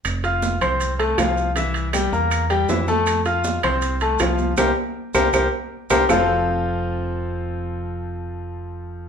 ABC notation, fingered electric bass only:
X:1
M:4/4
L:1/8
Q:1/4=159
K:F
V:1 name="Fingered electric bass" clef=bass
F,,,3 C,,3 C,,2- | C,,3 E,,3 F,,2- | F,,3 C,,3 C,,2 | C,, z2 C,, C,, z2 C,, |
F,,,8- | F,,,8 |]